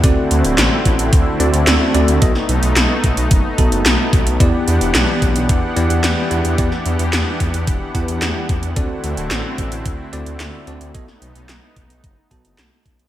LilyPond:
<<
  \new Staff \with { instrumentName = "Tine electric piano" } { \time 4/4 \key e \minor \tempo 4 = 110 <c' fis' a' d''>2~ <c' fis' a' d''>8 <c' fis' a' d''>4 <c' fis' a' d''>8 | <b fis' a' dis''>8 r2 <b fis' a' a''>4. | <b e' g' d''>2~ <b e' g' d''>8 <b e' g' d''>4 <b e' g' d''>8 | <b e' g' d''>8 r2 <b e' g' fis''>4. |
<c' fis' a' d''>2~ <c' fis' a' d''>8 <c' fis' a' d''>4 <c' fis' a' d''>8 | <b fis' a' dis''>8 r2 <b fis' a' a''>4. | }
  \new Staff \with { instrumentName = "Analog synth pad" } { \time 4/4 \key e \minor << { <d c' e' fis''>1 | <b dis'>1 | <e d' g' fis''>1~ | <e d' g' fis''>1 |
<d c' e'>1 | <b dis'>1 | } \\ { a1~ | a1 | r1 | r1 |
a1~ | a1 | } >> }
  \new Staff \with { instrumentName = "Detuned saw bass" } { \clef bass \time 4/4 \key e \minor d,16 r16 d,16 d,,16 a,,16 r16 a,,16 a,,16 d,16 r16 d,16 d,16 d,16 r16 d,16 d,16 | b,,16 r16 b,,16 b,,16 b,,16 r16 b,,16 b,,16 fis,,16 r16 b,,16 fis,,16 b,,16 r16 b,,16 b,,16 | e,16 r16 e,16 e,,16 b,,16 r16 b,,16 b,,16 e,16 r16 e,16 e,16 e,16 r16 e,16 e,16 | e,16 r16 e,16 e,16 e,16 r16 e,16 e,16 e,,16 r16 e,16 e,16 e,16 r16 e,16 e,16 |
d,16 r16 d,16 d,,16 a,,16 r16 a,,16 a,,16 d,16 r16 d,16 d,16 d,16 r16 d,16 d,16 | b,,16 r16 b,,16 b,,16 b,,16 r16 b,,16 b,,16 fis,,16 r16 b,,16 fis,,16 b,,16 r16 b,,16 b,,16 | }
  \new DrumStaff \with { instrumentName = "Drums" } \drummode { \time 4/4 <hh bd>8 hh16 hh16 <hc hh sn>8 <hh bd>16 hh16 <hh bd>8 hh16 hh16 <hc hh sn>8 hh16 hh16 | <hh bd>16 sn16 hh16 hh16 <hc hh sn>8 <hh bd>16 hh16 <hh bd>8 <hh bd>16 hh16 <hc hh sn>8 <hh bd>16 hh16 | <hh bd>8 hh16 hh16 <hc hh sn>8 <hh bd>16 hh16 <hh bd>8 hh16 hh16 <hc hh sn>8 hh16 hh16 | <hh bd>16 sn16 hh16 hh16 <hc hh sn>8 <hh bd>16 hh16 <hh bd>8 <hh bd>16 hh16 <hc hh sn>8 <hh bd>16 hh16 |
<hh bd>8 hh16 hh16 <hc hh sn>8 <hh bd>16 hh16 <hh bd>8 hh16 hh16 <hc hh sn>8 hh16 hh16 | <hh bd>16 sn16 hh16 hh16 <hc hh sn>8 <hh bd>16 hh16 <hh bd>8 <hh bd>16 hh16 <hc hh sn>8 <hh bd>16 hh16 | }
>>